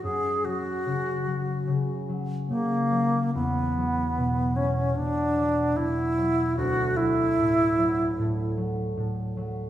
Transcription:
<<
  \new Staff \with { instrumentName = "Alto flute" } { \time 4/4 \key fis \major \tempo 4 = 74 gis'8 fis'2 r8 ais4 | b4. cis'8 d'4 e'4 | fis'8 e'2 r4. | }
  \new Staff \with { instrumentName = "Harp" } { \clef bass \time 4/4 \key fis \major <fis, fis>8 fis8 cis8 fis8 cis8 fis8 cis8 fis8 | e,8 fis8 b,8 fis8 b,8 fis8 b,8 fis8 | d,8 fis8 a,8 fis8 a,8 fis8 a,8 fis8 | }
>>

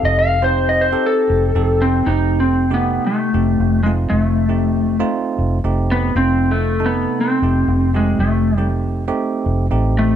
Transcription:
<<
  \new Staff \with { instrumentName = "Tine electric piano" } { \time 4/4 \key f \mixolydian \tempo 4 = 118 <c' ees' g' a'>8. <c' ees' g' c''>4 <c' ees' g' a'>4~ <c' ees' g' a'>16 <c' ees' g' a'>4 | <a c' ees' g'>4~ <a c' ees' g'>16 <c a ees' g'>4~ <c a ees' g'>16 <a c' ees' g'>4 <a c' ees' f'>8~ | <a c' ees' f'>8. <a c' ees' g'>4 <a c' ees' f'>4~ <a c' ees' f'>16 <a c' ees' g'>4 | <a c' ees' f'>4~ <a c' ees' f'>16 <c a ees' a'>4~ <c a ees' a'>16 <a c' ees' g'>4 <a c' ees' g'>8~ |
<a c' ees' g'>8. <a c' ees' g'>4 <a c' ees' g'>4~ <a c' ees' g'>16 <a c' ees' g'>4 | }
  \new Staff \with { instrumentName = "Electric slide guitar" } { \time 4/4 \key f \mixolydian << { ees''16 f''8 c''8 ees''16 c''8 a'2 | r1 | r1 | r1 |
r1 | } \\ { r2. r8 c'8 | \tuplet 3/2 { ees'4 c'8~ c'8 b4 } a4. aes8 | a2 r4. b8 | \tuplet 3/2 { c'4 a8~ a8 b4 } c'4. aes8 |
a4 r2 r8 a8 | } >> }
  \new Staff \with { instrumentName = "Fingered electric bass" } { \clef bass \time 4/4 \key f \mixolydian f,,2 r8 f,,8 f,,4 | f,,2 r8 f,,8 f,,4 | f,,2 r8 f,,8 f,,4 | f,,2 r8 f,,8 f,,4 |
f,,2 r8 f,,8 a,,4 | }
>>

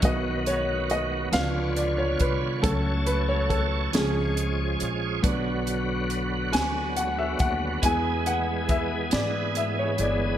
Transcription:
<<
  \new Staff \with { instrumentName = "Upright piano" } { \time 6/8 \key b \dorian \tempo 4. = 46 dis''8 cis''8 dis''8 eis''8 d''16 cis''16 b'8 | a'8 b'16 cis''16 a'8 gis'4. | r4. gis''8 fis''16 e''16 fis''8 | gis''8 fis''8 e''8 d''8 e''16 cis''16 d''8 | }
  \new Staff \with { instrumentName = "Upright piano" } { \time 6/8 \key b \dorian <fis b dis'>4. <eis b d'>4. | <fis a cis'>4. <eis gis cis'>4. | <fis b d'>4. r4. | <gis b e'>2. | }
  \new Staff \with { instrumentName = "Tonewheel organ" } { \clef bass \time 6/8 \key b \dorian << { <dis fis fis'>4. <d eis'>4. | <fis a a'>4. <eis gis gis'>4. | <d fis fis'>2. | <e gis gis'>2. | } \\ { b4. cis''4.~ | cis''2. | b2.~ | b2. | } >> }
  \new Staff \with { instrumentName = "Upright bass" } { \clef bass \time 6/8 \key b \dorian b,,4. cis,4 bis,,8 | cis,4. cis,4 ais,,8 | b,,4. d,4 dis,8 | e,4. gis,4 g,,8 | }
  \new DrumStaff \with { instrumentName = "Drums" } \drummode { \time 6/8 <hh bd>8 hh8 hh8 <hh sn>8 hh8 <hh bd>8 | <hh bd>8 hh8 <hh bd>8 <hh sn>8 hh8 hh8 | <hh bd>8 hh8 hh8 <hh sn>8 hh8 <hh bd>8 | <hh bd>8 hh8 <hh bd>8 <hh sn>8 hh8 hh8 | }
>>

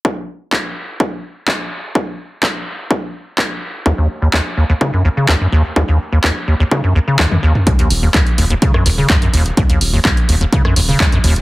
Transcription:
<<
  \new Staff \with { instrumentName = "Acid bass" } { \clef bass \time 4/4 \key ees \minor \tempo 4 = 126 r1 | r1 | ees,16 ees,16 r16 ees,16 ees,16 r16 ees,16 ees,16 des16 ges,16 ees,16 des16 ees,16 ges,16 ees,16 r16 | ees,16 ees,16 r16 ees,16 ees,16 r16 ees,16 ees,16 des16 ges,16 ees,16 des16 ees,16 ges,16 ees,16 r16 |
ees,16 ees,16 r16 ees,16 ees,16 r16 ees,16 ees,16 des16 ges,16 ees,16 des16 ees,16 ges,16 ees,16 r16 | ees,16 ees,16 r16 ees,16 ees,16 r16 ees,16 ees,16 des16 ges,16 ees,16 des16 ees,16 ges,16 ees,16 r16 | }
  \new Staff \with { instrumentName = "Analog synth bass" } { \clef bass \time 4/4 \key ees \minor r1 | r1 | r1 | r1 |
r8 ees,,8 r8 ees,,8 r8 ees,,8 r8 ees,,8 | r8 ees,,8 r8 ees,,8 r8 ees,,8 r8 ees,,8 | }
  \new DrumStaff \with { instrumentName = "Drums" } \drummode { \time 4/4 bd4 <hc bd>4 bd4 <hc bd>4 | bd4 <hc bd>4 bd4 <hc bd>4 | bd4 <hc bd>4 bd4 <hc bd>4 | bd4 <hc bd>4 bd4 <hc bd tommh>16 tommh8 toml16 |
<hh bd>16 hh16 hho8 <hc hh bd>16 hh16 hho16 hh16 <hh bd>16 ss16 hho8 <hc hh bd>16 hh16 hho16 hh16 | <hh bd>16 hh16 hho8 <hc hh bd>16 hh16 hho16 hh16 <hh bd>16 ss16 hho8 <hc hh bd>16 hh16 hho16 hh16 | }
>>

